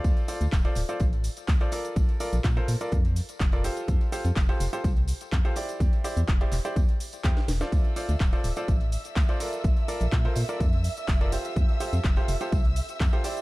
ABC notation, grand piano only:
X:1
M:4/4
L:1/16
Q:1/4=125
K:F
V:1 name="Grand piano"
[FAcd]2 [FAcd] z2 [FAcd] z [FAcd] z4 z [FAcd] [FABd]2- | [FABd]2 [FABd] z2 [FABc] z [FABd] z4 z [FABd] [FGAc]2- | [FGAc]2 [FGAc] z2 [FGAc] z [FGAc] z4 z [FGAc] [EGcd]2- | [EGcd]2 [EGcd] z2 [EGcd] z [EGcd] z4 [EGcg]2 z [FAcd]- |
[FAcd]2 [FAcd] z2 [FAcd] z [FAcd] z4 z [FAcd] [FABd]2- | [FABd]2 [FABd] z2 [FABc] z [FABd] z4 z [FABd] [FGAc]2- | [FGAc]2 [FGAc] z2 [FGAc] z [FGAc] z4 z [FGAc] [EGcd]2 |]